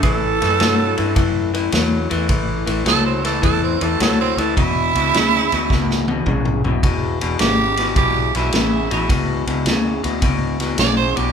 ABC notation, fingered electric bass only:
X:1
M:4/4
L:1/8
Q:"Swing" 1/4=106
K:Amix
V:1 name="Fingered electric bass" clef=bass
A,,, F,, G,, G,, F,,2 E,, E,, | A,,, A,,, C,,2 E,, E,, D,, D,, | E,,, C,, D,, D,, C,,2 B,,, B,,, | E,,, E,,, ^G,,,2 B,,, B,,, A,,, A,,, |
C,, C,, D,, D,, C,,2 B,,, B,,, |]